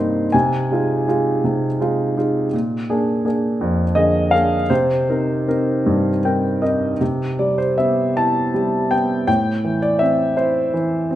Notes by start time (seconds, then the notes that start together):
Already playing: G2 C3 A#3 C4 D#4 G5 C6
0.32 C3 G#5
0.71 G#3 D#4 F4
1.08 G#3 D#4 F4
1.44 C3
1.80 G#3 D#4 F4
2.17 G#3 D#4 F4
2.53 A#2
2.90 A#3 D4 G#4
3.25 A#3 D4 G#4
3.61 F2
3.95 D3 A#3 G#4 D#5
4.31 A#3 D4 G#4 F5
4.70 C3 C5
5.09 C4 D#4 A#4
5.48 C4 D#4 A#4
5.86 G2
6.25 C4 D#4 A#4 G5
6.62 C4 D#4 A#4 D#5
7.01 C3
7.39 G3 D5
7.58 C5
7.78 B3 E5
8.16 E4 A5
8.54 G3
8.91 B3 G5
9.27 A2 G5
9.64 E3
9.82 D5
9.99 C4 E5
10.37 E4 C5
10.74 E3
11.11 C4